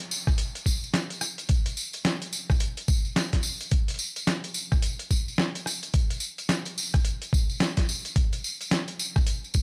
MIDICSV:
0, 0, Header, 1, 2, 480
1, 0, Start_track
1, 0, Tempo, 555556
1, 1291, Time_signature, 4, 2, 24, 8
1, 8314, End_track
2, 0, Start_track
2, 0, Title_t, "Drums"
2, 97, Note_on_c, 9, 54, 99
2, 183, Note_off_c, 9, 54, 0
2, 235, Note_on_c, 9, 36, 106
2, 235, Note_on_c, 9, 37, 55
2, 240, Note_on_c, 9, 54, 38
2, 321, Note_off_c, 9, 36, 0
2, 321, Note_off_c, 9, 37, 0
2, 326, Note_off_c, 9, 54, 0
2, 328, Note_on_c, 9, 42, 84
2, 340, Note_on_c, 9, 54, 48
2, 414, Note_off_c, 9, 42, 0
2, 426, Note_off_c, 9, 54, 0
2, 478, Note_on_c, 9, 42, 55
2, 488, Note_on_c, 9, 54, 28
2, 564, Note_off_c, 9, 42, 0
2, 569, Note_on_c, 9, 36, 62
2, 573, Note_off_c, 9, 54, 0
2, 573, Note_on_c, 9, 54, 93
2, 656, Note_off_c, 9, 36, 0
2, 659, Note_off_c, 9, 54, 0
2, 724, Note_on_c, 9, 54, 38
2, 809, Note_on_c, 9, 38, 108
2, 809, Note_on_c, 9, 42, 76
2, 811, Note_off_c, 9, 54, 0
2, 823, Note_on_c, 9, 54, 49
2, 895, Note_off_c, 9, 38, 0
2, 895, Note_off_c, 9, 42, 0
2, 909, Note_off_c, 9, 54, 0
2, 953, Note_on_c, 9, 42, 56
2, 969, Note_on_c, 9, 54, 25
2, 1040, Note_off_c, 9, 42, 0
2, 1046, Note_off_c, 9, 54, 0
2, 1046, Note_on_c, 9, 54, 96
2, 1047, Note_on_c, 9, 37, 54
2, 1132, Note_off_c, 9, 54, 0
2, 1133, Note_off_c, 9, 37, 0
2, 1193, Note_on_c, 9, 42, 39
2, 1201, Note_on_c, 9, 54, 42
2, 1279, Note_off_c, 9, 42, 0
2, 1285, Note_on_c, 9, 42, 82
2, 1287, Note_off_c, 9, 54, 0
2, 1291, Note_on_c, 9, 36, 122
2, 1291, Note_on_c, 9, 54, 55
2, 1372, Note_off_c, 9, 42, 0
2, 1377, Note_off_c, 9, 36, 0
2, 1377, Note_off_c, 9, 54, 0
2, 1432, Note_on_c, 9, 42, 58
2, 1433, Note_on_c, 9, 54, 28
2, 1519, Note_off_c, 9, 42, 0
2, 1520, Note_off_c, 9, 54, 0
2, 1529, Note_on_c, 9, 54, 88
2, 1615, Note_off_c, 9, 54, 0
2, 1670, Note_on_c, 9, 54, 36
2, 1675, Note_on_c, 9, 42, 38
2, 1756, Note_off_c, 9, 54, 0
2, 1762, Note_off_c, 9, 42, 0
2, 1769, Note_on_c, 9, 38, 125
2, 1769, Note_on_c, 9, 42, 82
2, 1769, Note_on_c, 9, 54, 50
2, 1856, Note_off_c, 9, 38, 0
2, 1856, Note_off_c, 9, 42, 0
2, 1856, Note_off_c, 9, 54, 0
2, 1916, Note_on_c, 9, 42, 53
2, 1919, Note_on_c, 9, 54, 28
2, 2002, Note_off_c, 9, 42, 0
2, 2006, Note_off_c, 9, 54, 0
2, 2010, Note_on_c, 9, 54, 102
2, 2097, Note_off_c, 9, 54, 0
2, 2157, Note_on_c, 9, 37, 56
2, 2158, Note_on_c, 9, 36, 109
2, 2161, Note_on_c, 9, 54, 40
2, 2243, Note_off_c, 9, 37, 0
2, 2244, Note_off_c, 9, 36, 0
2, 2247, Note_off_c, 9, 54, 0
2, 2247, Note_on_c, 9, 54, 53
2, 2250, Note_on_c, 9, 42, 81
2, 2333, Note_off_c, 9, 54, 0
2, 2336, Note_off_c, 9, 42, 0
2, 2394, Note_on_c, 9, 54, 23
2, 2397, Note_on_c, 9, 42, 55
2, 2480, Note_off_c, 9, 54, 0
2, 2483, Note_off_c, 9, 42, 0
2, 2489, Note_on_c, 9, 54, 97
2, 2491, Note_on_c, 9, 36, 109
2, 2575, Note_off_c, 9, 54, 0
2, 2577, Note_off_c, 9, 36, 0
2, 2634, Note_on_c, 9, 54, 38
2, 2720, Note_off_c, 9, 54, 0
2, 2731, Note_on_c, 9, 38, 118
2, 2731, Note_on_c, 9, 42, 77
2, 2732, Note_on_c, 9, 54, 53
2, 2818, Note_off_c, 9, 38, 0
2, 2818, Note_off_c, 9, 42, 0
2, 2818, Note_off_c, 9, 54, 0
2, 2877, Note_on_c, 9, 38, 38
2, 2877, Note_on_c, 9, 42, 55
2, 2878, Note_on_c, 9, 36, 64
2, 2882, Note_on_c, 9, 54, 26
2, 2962, Note_off_c, 9, 54, 0
2, 2962, Note_on_c, 9, 54, 94
2, 2963, Note_off_c, 9, 38, 0
2, 2963, Note_off_c, 9, 42, 0
2, 2964, Note_off_c, 9, 36, 0
2, 3048, Note_off_c, 9, 54, 0
2, 3116, Note_on_c, 9, 42, 38
2, 3117, Note_on_c, 9, 54, 39
2, 3202, Note_off_c, 9, 42, 0
2, 3204, Note_off_c, 9, 54, 0
2, 3208, Note_on_c, 9, 42, 79
2, 3209, Note_on_c, 9, 54, 49
2, 3211, Note_on_c, 9, 36, 119
2, 3295, Note_off_c, 9, 42, 0
2, 3296, Note_off_c, 9, 54, 0
2, 3298, Note_off_c, 9, 36, 0
2, 3355, Note_on_c, 9, 42, 53
2, 3358, Note_on_c, 9, 54, 27
2, 3372, Note_off_c, 9, 42, 0
2, 3372, Note_on_c, 9, 42, 42
2, 3404, Note_off_c, 9, 42, 0
2, 3404, Note_on_c, 9, 42, 29
2, 3419, Note_off_c, 9, 42, 0
2, 3419, Note_on_c, 9, 42, 24
2, 3435, Note_off_c, 9, 42, 0
2, 3435, Note_on_c, 9, 42, 20
2, 3445, Note_off_c, 9, 54, 0
2, 3445, Note_on_c, 9, 54, 91
2, 3521, Note_off_c, 9, 42, 0
2, 3531, Note_off_c, 9, 54, 0
2, 3596, Note_on_c, 9, 42, 38
2, 3597, Note_on_c, 9, 54, 41
2, 3682, Note_off_c, 9, 42, 0
2, 3683, Note_off_c, 9, 54, 0
2, 3691, Note_on_c, 9, 38, 126
2, 3691, Note_on_c, 9, 42, 81
2, 3691, Note_on_c, 9, 54, 55
2, 3777, Note_off_c, 9, 38, 0
2, 3777, Note_off_c, 9, 42, 0
2, 3778, Note_off_c, 9, 54, 0
2, 3836, Note_on_c, 9, 42, 54
2, 3841, Note_on_c, 9, 54, 24
2, 3922, Note_off_c, 9, 42, 0
2, 3925, Note_off_c, 9, 54, 0
2, 3925, Note_on_c, 9, 54, 100
2, 4012, Note_off_c, 9, 54, 0
2, 4076, Note_on_c, 9, 37, 52
2, 4077, Note_on_c, 9, 54, 40
2, 4078, Note_on_c, 9, 36, 107
2, 4163, Note_off_c, 9, 37, 0
2, 4164, Note_off_c, 9, 36, 0
2, 4164, Note_off_c, 9, 54, 0
2, 4168, Note_on_c, 9, 42, 84
2, 4176, Note_on_c, 9, 54, 52
2, 4255, Note_off_c, 9, 42, 0
2, 4263, Note_off_c, 9, 54, 0
2, 4314, Note_on_c, 9, 42, 56
2, 4320, Note_on_c, 9, 54, 27
2, 4401, Note_off_c, 9, 42, 0
2, 4406, Note_off_c, 9, 54, 0
2, 4411, Note_on_c, 9, 36, 63
2, 4412, Note_on_c, 9, 54, 94
2, 4498, Note_off_c, 9, 36, 0
2, 4498, Note_off_c, 9, 54, 0
2, 4563, Note_on_c, 9, 54, 39
2, 4649, Note_off_c, 9, 54, 0
2, 4649, Note_on_c, 9, 38, 117
2, 4659, Note_on_c, 9, 54, 50
2, 4735, Note_off_c, 9, 38, 0
2, 4746, Note_off_c, 9, 54, 0
2, 4798, Note_on_c, 9, 42, 54
2, 4802, Note_on_c, 9, 54, 27
2, 4884, Note_off_c, 9, 42, 0
2, 4888, Note_off_c, 9, 54, 0
2, 4890, Note_on_c, 9, 37, 52
2, 4899, Note_on_c, 9, 54, 90
2, 4976, Note_off_c, 9, 37, 0
2, 4985, Note_off_c, 9, 54, 0
2, 5036, Note_on_c, 9, 42, 36
2, 5039, Note_on_c, 9, 54, 42
2, 5122, Note_off_c, 9, 42, 0
2, 5125, Note_off_c, 9, 54, 0
2, 5129, Note_on_c, 9, 42, 76
2, 5132, Note_on_c, 9, 36, 118
2, 5133, Note_on_c, 9, 54, 51
2, 5215, Note_off_c, 9, 42, 0
2, 5218, Note_off_c, 9, 36, 0
2, 5219, Note_off_c, 9, 54, 0
2, 5274, Note_on_c, 9, 42, 56
2, 5278, Note_on_c, 9, 54, 25
2, 5359, Note_off_c, 9, 54, 0
2, 5359, Note_on_c, 9, 54, 100
2, 5360, Note_off_c, 9, 42, 0
2, 5445, Note_off_c, 9, 54, 0
2, 5515, Note_on_c, 9, 42, 37
2, 5517, Note_on_c, 9, 54, 37
2, 5601, Note_off_c, 9, 42, 0
2, 5603, Note_off_c, 9, 54, 0
2, 5607, Note_on_c, 9, 38, 125
2, 5607, Note_on_c, 9, 42, 82
2, 5607, Note_on_c, 9, 54, 56
2, 5694, Note_off_c, 9, 38, 0
2, 5694, Note_off_c, 9, 42, 0
2, 5694, Note_off_c, 9, 54, 0
2, 5749, Note_on_c, 9, 54, 28
2, 5755, Note_on_c, 9, 42, 51
2, 5835, Note_off_c, 9, 54, 0
2, 5841, Note_off_c, 9, 42, 0
2, 5855, Note_on_c, 9, 54, 96
2, 5941, Note_off_c, 9, 54, 0
2, 5995, Note_on_c, 9, 37, 52
2, 5995, Note_on_c, 9, 42, 37
2, 5996, Note_on_c, 9, 54, 36
2, 5998, Note_on_c, 9, 36, 107
2, 6082, Note_off_c, 9, 37, 0
2, 6082, Note_off_c, 9, 42, 0
2, 6082, Note_off_c, 9, 54, 0
2, 6084, Note_off_c, 9, 36, 0
2, 6087, Note_on_c, 9, 42, 78
2, 6093, Note_on_c, 9, 54, 55
2, 6174, Note_off_c, 9, 42, 0
2, 6180, Note_off_c, 9, 54, 0
2, 6235, Note_on_c, 9, 42, 51
2, 6247, Note_on_c, 9, 54, 27
2, 6321, Note_off_c, 9, 42, 0
2, 6331, Note_on_c, 9, 36, 112
2, 6334, Note_off_c, 9, 54, 0
2, 6340, Note_on_c, 9, 54, 86
2, 6417, Note_off_c, 9, 36, 0
2, 6426, Note_off_c, 9, 54, 0
2, 6476, Note_on_c, 9, 54, 38
2, 6562, Note_off_c, 9, 54, 0
2, 6569, Note_on_c, 9, 38, 117
2, 6569, Note_on_c, 9, 42, 71
2, 6569, Note_on_c, 9, 54, 54
2, 6655, Note_off_c, 9, 38, 0
2, 6655, Note_off_c, 9, 42, 0
2, 6655, Note_off_c, 9, 54, 0
2, 6712, Note_on_c, 9, 54, 29
2, 6715, Note_on_c, 9, 38, 38
2, 6715, Note_on_c, 9, 42, 54
2, 6717, Note_on_c, 9, 36, 63
2, 6799, Note_off_c, 9, 54, 0
2, 6801, Note_off_c, 9, 38, 0
2, 6801, Note_off_c, 9, 42, 0
2, 6803, Note_off_c, 9, 36, 0
2, 6815, Note_on_c, 9, 54, 88
2, 6902, Note_off_c, 9, 54, 0
2, 6955, Note_on_c, 9, 42, 37
2, 6962, Note_on_c, 9, 54, 41
2, 7042, Note_off_c, 9, 42, 0
2, 7048, Note_off_c, 9, 54, 0
2, 7049, Note_on_c, 9, 42, 76
2, 7050, Note_on_c, 9, 36, 118
2, 7051, Note_on_c, 9, 54, 53
2, 7136, Note_off_c, 9, 36, 0
2, 7136, Note_off_c, 9, 42, 0
2, 7137, Note_off_c, 9, 54, 0
2, 7193, Note_on_c, 9, 54, 28
2, 7196, Note_on_c, 9, 42, 50
2, 7279, Note_off_c, 9, 54, 0
2, 7283, Note_off_c, 9, 42, 0
2, 7294, Note_on_c, 9, 54, 84
2, 7381, Note_off_c, 9, 54, 0
2, 7436, Note_on_c, 9, 42, 34
2, 7441, Note_on_c, 9, 54, 38
2, 7522, Note_off_c, 9, 42, 0
2, 7528, Note_off_c, 9, 54, 0
2, 7528, Note_on_c, 9, 38, 121
2, 7528, Note_on_c, 9, 42, 80
2, 7532, Note_on_c, 9, 54, 50
2, 7615, Note_off_c, 9, 38, 0
2, 7615, Note_off_c, 9, 42, 0
2, 7618, Note_off_c, 9, 54, 0
2, 7670, Note_on_c, 9, 54, 25
2, 7672, Note_on_c, 9, 42, 50
2, 7756, Note_off_c, 9, 54, 0
2, 7759, Note_off_c, 9, 42, 0
2, 7771, Note_on_c, 9, 54, 97
2, 7858, Note_off_c, 9, 54, 0
2, 7913, Note_on_c, 9, 37, 50
2, 7914, Note_on_c, 9, 54, 40
2, 7915, Note_on_c, 9, 36, 106
2, 7999, Note_off_c, 9, 37, 0
2, 8000, Note_off_c, 9, 54, 0
2, 8001, Note_off_c, 9, 36, 0
2, 8005, Note_on_c, 9, 42, 76
2, 8007, Note_on_c, 9, 54, 48
2, 8092, Note_off_c, 9, 42, 0
2, 8093, Note_off_c, 9, 54, 0
2, 8159, Note_on_c, 9, 54, 24
2, 8241, Note_off_c, 9, 54, 0
2, 8241, Note_on_c, 9, 54, 83
2, 8248, Note_on_c, 9, 36, 60
2, 8314, Note_off_c, 9, 36, 0
2, 8314, Note_off_c, 9, 54, 0
2, 8314, End_track
0, 0, End_of_file